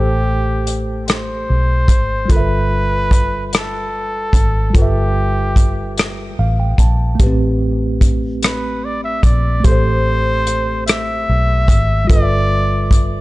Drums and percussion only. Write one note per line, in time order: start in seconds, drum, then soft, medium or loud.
0.67 closed hi-hat medium
1.08 cross-stick loud
1.08 closed hi-hat medium
1.88 kick medium
1.88 closed hi-hat medium
2.30 kick loud
2.30 closed hi-hat medium
3.11 kick medium
3.11 closed hi-hat medium
3.53 cross-stick loud
3.53 closed hi-hat medium
4.33 kick medium
4.33 closed hi-hat medium
4.75 kick loud
4.75 closed hi-hat medium
5.56 kick medium
5.56 closed hi-hat medium
5.98 cross-stick loud
5.98 closed hi-hat medium
6.78 kick medium
6.78 closed hi-hat medium
7.20 kick loud
7.20 closed hi-hat medium
8.01 kick medium
8.01 closed hi-hat medium
8.43 cross-stick loud
8.43 closed hi-hat medium
9.23 kick medium
9.23 closed hi-hat medium
9.64 kick loud
9.64 closed hi-hat medium
10.47 closed hi-hat medium
10.88 cross-stick loud
10.88 closed hi-hat medium
11.68 kick medium
11.68 closed hi-hat medium
12.10 kick loud
12.10 closed hi-hat medium
12.91 kick medium
12.91 closed hi-hat medium